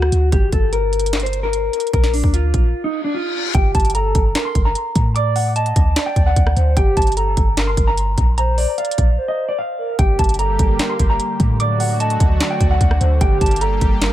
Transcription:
Already playing: D2 F#4
0.02 cross-stick
0.12 D2, closed hi-hat
0.32 G1 G4, kick, closed hi-hat
0.53 G1 A4, kick, closed hi-hat
0.73 A#4, closed hi-hat
0.93 closed hi-hat
1.00 closed hi-hat
1.06 closed hi-hat
1.13 snare, clap, closed hi-hat
1.20 C5, closed hi-hat
1.26 closed hi-hat
1.33 closed hi-hat
1.43 A#4
1.53 closed hi-hat
1.73 closed hi-hat
1.80 closed hi-hat
1.87 closed hi-hat
1.93 A#1 A#4, kick, closed hi-hat
2.04 snare
2.14 D4, open hi-hat
2.24 D2, kick
2.34 F4, closed hi-hat
2.54 A#1, kick, closed hi-hat
2.74 reverse cymbal
2.84 D#4
3.04 D4
3.14 F4
3.54 G1 G4 G5, kick, closed hi-hat
3.75 G1 A5, kick, closed hi-hat
3.80 closed hi-hat
3.85 closed hi-hat
3.90 closed hi-hat
3.95 A4 A#5, closed hi-hat
4.15 G1, kick, closed hi-hat
4.35 A#4, snare, clap, closed hi-hat
4.45 C6
4.55 G1, kick, closed hi-hat
4.65 A#5
4.75 closed hi-hat
4.95 A2, kick, closed hi-hat
5.16 D5 D6, closed hi-hat
5.36 F#5, open hi-hat
5.56 D#5 A5, closed hi-hat
5.66 closed hi-hat
5.76 D2, kick, closed hi-hat
5.96 D5, snare, clap, closed hi-hat
6.06 G5
6.16 D2, kick, closed hi-hat
6.26 F#5
6.36 D2, kick, closed hi-hat
6.47 cross-stick
6.56 D2 C5, closed hi-hat
6.77 G1 G4 G5, kick, closed hi-hat
6.97 G1 A5, kick, closed hi-hat
7.02 closed hi-hat
7.07 closed hi-hat
7.12 closed hi-hat
7.17 A4 A#5, closed hi-hat
7.37 G1, kick, closed hi-hat
7.57 A#4, snare, clap, closed hi-hat
7.67 C6
7.77 G1, kick, closed hi-hat
7.87 A#5
7.98 closed hi-hat
8.18 A#1, kick, closed hi-hat
8.38 C5 A#5, closed hi-hat
8.58 D5, open hi-hat
8.78 D5 F5, closed hi-hat
8.85 closed hi-hat
8.91 closed hi-hat
8.98 A#1, kick, closed hi-hat
9.18 C5
9.28 D#5
9.49 D5
9.59 F5
9.79 A#4
9.99 G1 D3 G3 A#3 G4 G5, kick, closed hi-hat
10.19 G1 A5, kick, closed hi-hat
10.24 closed hi-hat
10.29 closed hi-hat
10.34 closed hi-hat
10.39 A4 A#5, closed hi-hat
10.59 G1, kick, closed hi-hat
10.79 A#4, snare, clap, closed hi-hat
10.90 C6
10.99 G1, kick, closed hi-hat
11.10 A#5
11.20 closed hi-hat
11.40 A2, kick, closed hi-hat
11.60 F#3 A3 F#4 D5 D6, closed hi-hat
11.80 F#5, open hi-hat
12.00 D#5 A5, closed hi-hat
12.10 closed hi-hat
12.20 D2, kick, closed hi-hat
12.40 D5, snare, clap, closed hi-hat
12.51 G5
12.61 D2, kick, closed hi-hat
12.71 F#5
12.81 D2, kick, closed hi-hat
12.91 cross-stick
13.01 D2 C5, closed hi-hat
13.21 G1 G3 A#3 G4 G5, kick, closed hi-hat
13.41 G1 A5, kick, closed hi-hat
13.46 closed hi-hat
13.51 closed hi-hat
13.56 closed hi-hat
13.61 A4 A#5, closed hi-hat
13.81 G1, kick, closed hi-hat
14.02 A#4, snare, clap, closed hi-hat

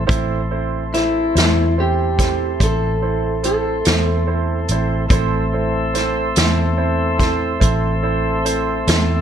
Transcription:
0.07 A1 E3 A3 C4 E4 A4 C5, kick, closed hi-hat
0.51 C4 E4 A4 C5
0.93 C4 E4 A4 C5, snare, closed hi-hat
1.34 E2 C4 E4 A4 C5, snare, closed hi-hat
1.78 C4 E4 G4 A4 C5
2.19 C4 E4 A4 C5, kick, snare, closed hi-hat
2.60 A1 C4 E4 A4 C5, kick, closed hi-hat
2.64 A4
3.02 C4 E4 A4 C5
3.43 C4 E4 A4 C5, closed hi-hat
3.85 E2 C4 E4 A4 C5, snare, closed hi-hat
4.27 C4 E4 A4 C5
4.68 A1 C4 E4 A4 C5, closed hi-hat
5.08 A1 A3 C4 E4 A4 C5, kick, closed hi-hat
5.53 C4 E4 A4 C5
5.94 C4 E4 A4 C5, snare, closed hi-hat
6.36 E2 C4 E4 A4 C5, snare, closed hi-hat
6.77 C4 E4 A4 C5
7.18 C4 E4 A4 C5, kick, snare, closed hi-hat
7.60 A1 C4 E4 A4 C5, kick, closed hi-hat
8.03 C4 E4 A4 C5
8.45 C4 E4 A4 C5, closed hi-hat
8.87 E2 C4 E4 A4 C5, snare, closed hi-hat

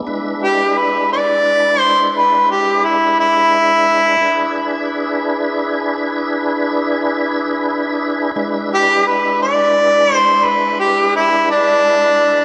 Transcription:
0.07 G#3 D4 E4 B4
0.43 G4
0.78 B4
1.13 D5
1.80 C5
2.17 B4
2.51 G4
2.85 E4
3.20 E4
4.21 D4 E4 G#4 B4
8.36 G#3 D4 E4 B4
8.74 G4
9.07 B4
9.42 D5
10.15 C5
10.45 B4
10.80 G4
11.16 E4
11.51 D4

